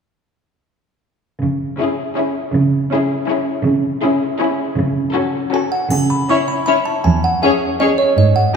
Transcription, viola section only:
1.79 C#4
2.17 C#4
2.92 C#4
3.29 C#4
4.03 C#4
4.40 C#4
5.15 C#4
5.52 C#4
6.29 C#4
6.67 C#4
7.43 C#4
7.80 C#4

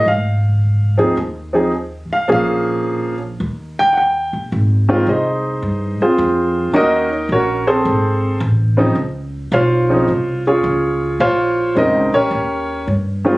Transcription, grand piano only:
0.08 F5
0.98 F3 C4 D#4 G#4
1.53 F3 C4 D#4 G#4
2.13 F5
2.28 F3 A#3 C#4 G#4
2.32 F5
3.79 G5
3.93 F#5
3.98 G5
4.89 D#3 G#3 C4 F4
5.09 D#4 G#4 C5 D#5
6.02 C4 F4 G#4 C5
6.73 D#3 A#3 C#4 D#4 F#4 A#4 D#5
7.32 C#4 F#4 A#4 C#5
7.67 C4 G#4 A4 C5
8.77 C#3 F3 C4 D#4
9.53 F4 C5 C#5 F5
9.89 C#3 F3 C4 D#4
10.47 C#4 F4 G#4 C#5
11.20 F4 C5 C#5 F5
11.75 C#3 G#3 C4 D#4 A#4 C5 D#5
12.14 C#4 G4 A#4 C#5
13.25 D#3 G#3 C4 F4

